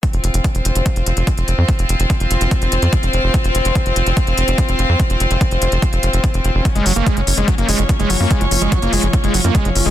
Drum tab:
HH |xxxxxxxxxxxxxxx-|xxxxxxxxxxxxxxx-|xxxxxxxxxxxxxxx-|xxxxxxxxxxxxxxx-|
BD |o---o---o---o---|o---o---o---o---|o---o---o---o---|o---o---o---o---|

HH |xxoxxxoxxxoxxxo-|xxoxxxoxxxoxxxo-|
BD |o---o---o---o---|o---o---o---o---|